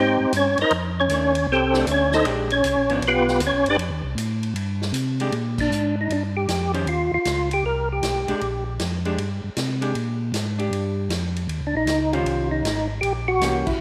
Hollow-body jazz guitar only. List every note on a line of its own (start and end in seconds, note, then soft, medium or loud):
1.11 1.33 D#3 soft
1.11 1.33 A3 soft
1.11 1.34 D4 medium
1.75 2.23 A3 medium
1.75 2.23 D4 medium
2.26 2.48 G#3 medium
2.26 2.48 D4 medium
2.26 2.49 G4 medium
2.90 3.01 F3 medium
2.90 3.02 B3 medium
2.90 3.02 D4 medium
5.21 5.32 G#3 medium
5.21 5.32 D4 medium
5.21 5.32 G4 medium
6.74 6.86 D#3 medium
6.74 6.86 C#4 medium
6.74 6.86 G4 medium
6.74 6.86 C5 medium
8.28 8.40 G#3 medium
8.28 8.40 D4 medium
8.28 8.41 G4 medium
9.06 9.17 G#3 medium
9.06 9.17 D4 medium
9.06 9.18 G4 medium
9.81 9.94 G#3 medium
9.81 9.94 D4 medium
9.81 9.94 G4 medium
10.59 11.08 D4 medium
10.59 11.08 G4 medium
12.13 12.62 D#3 medium
12.13 12.62 C#4 medium
12.13 12.62 G4 medium
12.13 12.63 C5 medium
13.41 13.64 E3 medium
13.41 13.64 A#3 medium
13.41 13.65 C#4 medium
13.41 13.65 G4 medium